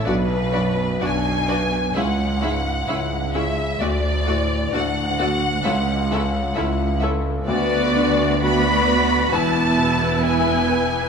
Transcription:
X:1
M:4/4
L:1/8
Q:1/4=65
K:Bdor
V:1 name="Violin section"
B2 g2 f3 e | d2 f4- f z | d2 b2 a2 g2 |]
V:2 name="Violin section"
[Bd] [Bd] [Bd] [Bd] [Ge] [Ge] [Ge] [Ge] | [Fd] [Fd] [Fd] [Fd] [Ae] [Ae] [Ae] [Ae] | [Bd]2 [Bd]2 B4 |]
V:3 name="Viola section"
[DF] [DF] [DF] [DF] [CE] [CE] [CE] [CE] | [A,F] [A,F] [A,F] [A,F] [CE] [CE] [CE] [CE] | [B,F]2 [B,F]2 [B,E]4 |]
V:4 name="Grand piano" clef=bass
B,,, F,, D B C,, G,, E G | D,, A,, D F C,, C, E A | D,, D, F B E,, B,, E B |]
V:5 name="Cello section" clef=bass
B,,2 B,,2 C,,2 C,,2 | D,,2 D,,2 C,,2 C,,2 | D,,4 E,,4 |]
V:6 name="Double bass section" clef=bass
B,,,2 B,,,2 C,,2 C,,2 | D,,2 D,,2 C,,2 C,,2 | D,,4 E,,,4 |]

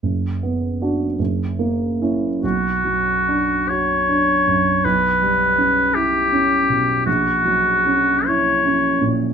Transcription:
X:1
M:6/8
L:1/8
Q:3/8=52
K:Bm
V:1 name="Oboe"
z6 | F3 c3 | B3 G3 | F3 c2 z |]
V:2 name="Grand piano"
F,,, B, [DF] F,,, ^A, [CE] | B,,, F, D F D F,, | B,,, G, C E C B,, | ^A,,, F, C E C ^A,, |]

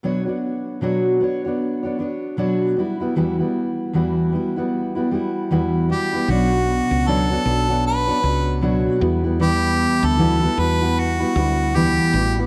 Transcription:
X:1
M:4/4
L:1/16
Q:"Swing 16ths" 1/4=77
K:Bm
V:1 name="Harmonica"
z16 | z12 z2 G2 | F4 A4 B4 z4 | G3 A3 B2 F4 G3 z |]
V:2 name="Steel-string acoustic guitar"
[B,,F,B,DFc] [B,DFc]3 [B,,F,B,DFc]2 [B,DFc] [B,DFc]2 [B,DFc] [B,DFc]2 [B,,F,B,DFc]2 [G,B,EF] [G,B,EF] | [E,,E,G,B,EF] [G,B,EF]3 [E,,E,G,B,EF]2 [G,B,EF] [G,B,EF]2 [G,B,EF] [G,B,EF]2 [E,,E,G,B,EF]2 [G,B,EF] [G,B,EF] | [B,,F,B,DFc]4 [B,,F,B,DFc] [B,DFc] [B,DFc] [B,DFc]2 [B,DFc] [B,DFc]2 [B,,F,B,DFc]2 [G,B,EF] [G,B,EF] | [E,,E,G,B,E]4 [E,,E,G,B,EF] [G,B,EF] [G,B,EF] [G,B,EF]2 [G,B,EF] [G,B,EF]2 [E,,E,G,B,E]2 [G,B,EF] [G,B,EF] |]
V:3 name="Fretless electric bass" clef=bass
z16 | z16 | B,,,3 C,,3 B,,,4 C,,4 E,,2- | E,,3 D,,3 E,,4 D,,4 A,,,2 |]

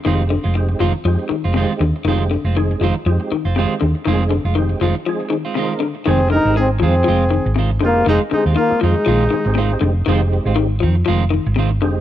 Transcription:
X:1
M:4/4
L:1/16
Q:"Swing 16ths" 1/4=120
K:Fdor
V:1 name="Trumpet"
z16 | z16 | z16 | A2 B2 A2 A6 z2 F2 |
E2 E2 F2 E8 z2 | z16 |]
V:2 name="Tonewheel organ"
[A,CEG]2 z2 [A,CEG]2 z2 [A,CEG]2 z2 [A,CEG]2 z2 | [A,CEG]2 z2 [A,CEA]2 z2 [A,CEG]2 z2 [A,CEG]2 z2 | [A,CEA]2 z2 [A,CEG]2 z2 [A,CEA]2 z2 [A,CEB]2 z2 | [A,CEG]4- [A,CEG] z8 z [A,CEG]2 |
z2 [A,CEG]2 z [A,CEF]2 z2 [A,CEG] [A,CEG] [A,CEG] z [A,CEG]2 z | [A,CEG]4- [A,CEG] z8 z [A,CEG]2 |]
V:3 name="Clean electric guitar"
[E,A,CF] z2 [A,CF] z2 [E,A,CF] z4 [A,CF] [E,A,CF] z3 | [E,A,CF] z2 [A,CF] z2 [E,A,CF] z4 [CF] [E,A,CF] z3 | [E,A,CF] z2 [A,F] z2 [E,A,CF] z4 [A,CF] [E,A,CF] z3 | [E,A,C] z2 [A,C] z2 [E,A,CF] z [A,CF] z3 [E,A,CF] z3 |
[E,A,CF] z2 [A,CF] z2 [E,A,CF] z [E,A,CF] z3 [E,A,CF] z3 | [E,A,CF] z2 [A,CF] z2 [E,C] z [E,A,CF] z3 [E,A,CF] z3 |]
V:4 name="Trombone"
z16 | z16 | z16 | C2 E2 C2 C6 z2 B,2 |
A,2 A,2 B,2 A,8 z2 | z16 |]
V:5 name="Clean electric guitar" clef=bass
E,2 D,2 z2 F,2 F,2 E,2 C,2 D,2 | E,2 D,2 E,2 F,2 F,2 E,2 C,2 D,2 | E,2 D,2 E,2 F,2 F,2 E,2 C,2 D,2 | E,2 D,2 E,2 F,2 F,2 E,2 C,2 D,2 |
E,2 D,2 E,2 F,2 F,2 E,2 C,2 D,2 | E,2 z2 E,2 F,2 F,2 E,2 C,2 D,2 |]
V:6 name="Fingered electric bass" clef=bass
F,,,3 F,,,3 F,,, z F,, z2 F,,,2 z E,, z | F,,,3 F,,,3 F,,, z F,, z2 F,,,2 z E,, z | F,,,3 F,,,3 F,,, z8 z | F,,,3 A,,,3 F,,2 F,,,3 A,,,3 F,,,2 |
F,,, z2 E,, z2 F,, z B,,,2 z A,,,3 F,,,2 | F,,,3 A,,,3 F,,2 F,,,3 A,,,3 F,,,2 |]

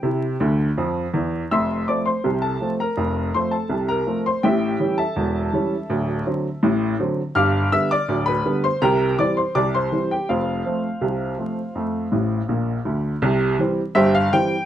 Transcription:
X:1
M:2/4
L:1/16
Q:1/4=82
K:F
V:1 name="Upright piano"
g6 z2 | [ec'e']2 [dd'] [cc']2 [Aa]2 [Bb]- | [Bb]2 [cc'] [Aa]2 [Bb]2 [cc'] | [Geg]3 [Aea]4- [Aea]- |
[Aea]6 z2 | [fd'f']2 [ee'] [dd']2 [=B=b]2 [cc'] | [Bgb]2 [dd'] [cc'] [dd'] [cc']2 [Gg] | [Fcf]8- |
[Fcf]4 z4 | [K:C] z4 [Gce] f g2 |]
V:2 name="Upright piano" clef=bass
[C,E]2 [D,,D,]2 [F,,F,]2 [E,,E,]2 | [F,,,F,,]2 [F,A,C]2 [C,,C,]2 [F,A,C]2 | [F,,,F,,]2 [F,A,C]2 [C,,C,]2 [F,A,C]2 | [A,,,A,,]2 [E,G,^C]2 [E,,,E,,]2 [E,G,C]2 |
[D,,,D,,]2 [D,^F,C]2 [A,,,A,,]2 [D,F,C]2 | [G,,,G,,]2 [D,G,=B,]2 [D,,,D,,]2 [D,G,B,]2 | [C,,C,]2 [E,G,C]2 [C,,C,]2 [E,G,C]2 | [F,,,F,,]2 [F,A,C]2 [C,,C,]2 [F,A,C]2 |
[F,,A,]2 [A,,,A,,]2 [B,,,B,,]2 [D,,D,]2 | [K:C] [C,,C,]2 [E,G,C]2 [G,,,G,,]2 [E,G,C]2 |]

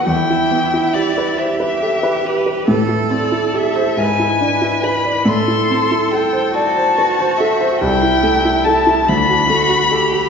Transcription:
X:1
M:6/8
L:1/16
Q:3/8=47
K:Ador
V:1 name="Violin"
g4 d2 e4 B2 | z2 d2 e2 ^g4 b2 | c'4 g2 a4 e2 | g4 a2 b6 |]
V:2 name="Cello"
E6 G6 | A6 B6 | A6 F6 | E6 D2 F2 G2 |]
V:3 name="Grand piano"
E,, E B, E G B c B A B G B | A,, E C E G c ^G,, E D E B d | A,, E C E A c d c B c A c | C,, E A, E A E D,, F A, F A F |]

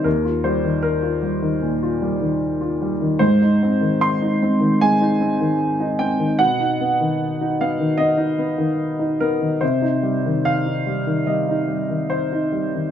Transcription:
X:1
M:4/4
L:1/16
Q:1/4=75
K:Cphr
V:1 name="Grand piano"
B2 c2 B8 z4 | c4 c'4 a6 g2 | ^f6 =f2 ^d6 B2 | c4 f4 e4 c4 |]
V:2 name="Grand piano" clef=bass
E,, F G, E,2 F G, E, B,, F G, E,2 F G, E, | A,, E C E,2 E C E, A, E C E,2 E C E, | =B,, ^D =B, ^D,2 D B, D, B, D B, D,2 D B, D, | C, E G, E,2 E G, E, G, E G, E,2 E G, E, |]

